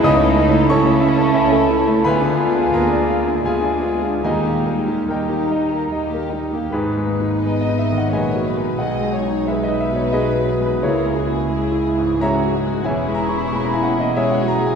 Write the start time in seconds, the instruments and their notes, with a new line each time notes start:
0.00 double bass section C#2, grand piano C#2, french horn section A3 E4, viola section C#4, cello section D#4, violin section E4 C#5, clarinet E4, flute A5
0.04 grand piano D#5 D#6
0.17 grand piano C#3, viola section A3, violin section C#4 A4
0.34 grand piano A3, viola section C#4, violin section E4 C#5
0.51 viola section A3, violin section C#4 A4, grand piano E4
0.68 double bass section C#2, french horn section A3 E4, cello section C#4, viola section C#4, violin section E4, clarinet E4, grand piano A4 C#5 A5 C#6, flute A5
0.72 violin section C#5
0.85 viola section A3, violin section C#4, grand piano E4
0.89 violin section A4
1.01 viola section C#4, violin section E4, grand piano E5
1.05 violin section C#5
1.17 viola section A3, violin section C#4 A4, grand piano A5
1.34 double bass section C#2, viola section C#4, violin section E4 C#5, grand piano E5
1.50 viola section A3, violin section C#4 A4, grand piano A4
1.67 viola section C#4, violin section E4 C#5, grand piano E4
1.85 grand piano A3, viola section A3, violin section C#4 A4
2.01 double bass section D2, french horn section G#3 F4, cello section B3, violin section F4 B4, clarinet F4, flute G#5, grand piano B5
2.06 grand piano D2 B4 G#5, viola section B3
2.18 violin section D4 G#4, viola section D4
2.23 grand piano D3
2.36 viola section B3, violin section F4 B4
2.41 grand piano D4
2.53 violin section D4 G#4, viola section D4
2.58 grand piano F4
2.69 double bass section D2, cello section A#3, violin section F4 B4
2.74 viola section B3, grand piano G#4 A#4 A#5
2.87 violin section D4 G#4
2.92 viola section D4, grand piano D5
3.06 viola section B3, violin section F4 B4
3.10 grand piano F5
3.24 violin section D4 G#4, viola section D4, grand piano G#5
3.43 double bass section D2, french horn section G#3 F4, cello section G#3, viola section B3, violin section F4 B4, clarinet F4, grand piano F5 G#5, flute G#5
3.47 grand piano G#4
3.60 violin section D4 G#4, viola section D4, grand piano D5
3.82 viola section B3, violin section F4 B4, grand piano G#4
4.01 violin section D4 G#4, viola section D4, grand piano F4
4.22 double bass section D#2, grand piano D#2 G#4 D#5 G#5, viola section G3, cello section G#3, french horn section A#3 D#4, violin section D#4 G4, clarinet D#4, flute A#5
4.44 grand piano A#2, viola section A#3, violin section G4 A#4
4.66 viola section G3, grand piano A#3, violin section D#4 G4
4.86 viola section A#3, grand piano D#4, violin section G4 A#4
5.07 double bass section D#2, cello section G3, viola section G3, french horn section A#3 D#4, violin section D#4 G4, clarinet D#4, grand piano A#4 G5, flute A#5
5.12 grand piano G4 D#5
5.28 viola section A#3, grand piano D#4, violin section G4 A#4
5.49 viola section G3, violin section D#4 G4, grand piano D#5
5.69 viola section A#3, violin section G4 A#4, grand piano A#5
5.89 double bass section D#2, viola section G3, violin section D#4, grand piano D#5
5.93 violin section G4
6.08 viola section A#3, violin section G4 A#4
6.14 grand piano A#4
6.30 viola section G3, violin section D#4 G4, grand piano D#4
6.51 viola section A#3, violin section G4 A#4
6.55 grand piano A#3
6.69 double bass section G#1, cello section G#2, viola section G#3 D#4, grand piano B4
6.73 grand piano G#2 D#4 G#4, violin section B4
6.98 grand piano G#3
7.07 viola section A#3
7.22 grand piano D#4
7.42 viola section B3, violin section D#5
7.46 grand piano G#3
7.61 grand piano D#5
7.69 grand piano D#4
7.78 grand piano E5
7.92 grand piano D#3
7.98 grand piano F#5
8.09 double bass section A#1, cello section A#2, grand piano G#3, viola section C#4, violin section A#4 C#5
8.13 grand piano B4 D#5 G#5
8.35 grand piano F#3
8.46 viola section D#4, violin section B4
8.57 grand piano G#3
8.79 double bass section B1, grand piano B1 F#5, cello section B2, viola section G#3 D#4, violin section G#4 D#5
9.01 grand piano G#3
9.12 violin section C#5
9.23 grand piano D#4
9.47 grand piano G#3 E5, viola section G#3, violin section B4
9.63 grand piano D#5
9.68 grand piano D#4
9.80 grand piano E5
9.91 grand piano B2
9.96 grand piano C#5
10.12 grand piano G#3 G#4 B4 D#5, viola section B3
10.39 grand piano F#3
10.60 grand piano G#3
10.66 grand piano B4
10.82 grand piano C#2 E4 G#4 C#5, double bass section C#2, cello section C#3, viola section A#3 E4, violin section G#4 A#4
11.05 grand piano G#3
11.16 viola section F#4, violin section G#4
11.27 grand piano E4
11.48 viola section G#3 E4, grand piano G#3
11.72 grand piano E4
11.85 viola section E4
11.98 grand piano G#2
12.21 viola section G#3 C#4, grand piano G#3 C#5 E5 A#5, violin section F#4 G#4
12.46 grand piano F#3
12.54 viola section D#4
12.67 grand piano G#3
12.84 double bass section E1, cello section E2, viola section C#4 E4, violin section E4 G#4, grand piano C#5 E5 G#5
12.88 grand piano E2
13.08 grand piano G#3
13.15 grand piano A#5
13.29 grand piano E4 C#6
13.38 grand piano B5
13.48 viola section A#3 C#4, grand piano C#6
13.52 grand piano G#3 B5
13.64 grand piano A#5
13.74 grand piano E4 G#5
13.83 grand piano F#5
13.98 grand piano E3 D#5
14.15 viola section G#3 C#4, grand piano G#3 G#4 C#5 E5, violin section G#4 C#5
14.32 grand piano F#5
14.42 grand piano F#3
14.48 grand piano A#5
14.61 grand piano G#3
14.67 grand piano G#5